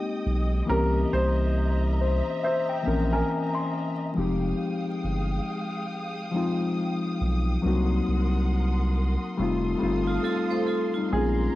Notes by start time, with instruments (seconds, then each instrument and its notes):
Already playing: reed electric piano G#3 A#3 C4 D#4 G4, string section D#5 G5 D#6
0.26 sub bass B1
0.65 sub bass C2, reed electric piano E3 A#3 C4, upright piano A#4, string section E5 A#5
0.69 reed electric piano C#4 G4
1.13 sub bass C2, upright piano C5
2.01 reed electric piano C5
2.44 upright piano C5, reed electric piano E5
2.69 reed electric piano G5
2.82 reed electric piano E3 A#3 C4
2.86 sub bass A#1, reed electric piano C#4 A#4
3.13 upright piano A#4, reed electric piano G#5
3.30 reed electric piano A#5
3.55 reed electric piano C6
4.14 sub bass F1, reed electric piano F3 G#3 C4 D#4, string section G#3 F5 G5 D#6
4.19 reed electric piano G4
5.04 sub bass G1
6.31 reed electric piano F3 G#3 C4 D#4
6.37 reed electric piano F4
7.21 sub bass B1
7.62 sub bass C2, reed electric piano F#3 A#3 C4 D#4, string section A#4 F#5 C6
7.67 reed electric piano F#4
8.08 sub bass C2
9.37 sub bass F1, reed electric piano G3 A3 C4, string section A4 F5 D#6
9.41 reed electric piano D#4 F4
9.78 sub bass G1, reed electric piano G3 A3 C4 D#4
9.83 reed electric piano F4
10.07 vibraphone F4
10.23 reed electric piano C4 A4, vibraphone F4 A4
10.51 reed electric piano A3 F4, vibraphone A4 C5
10.67 vibraphone F4 A4
10.94 reed electric piano G3 D#4, vibraphone F4
11.10 sub bass A#1, reed electric piano G#3 A#3 C4 C#4, upright piano G#4, string section A#4 A#5
11.15 reed electric piano F4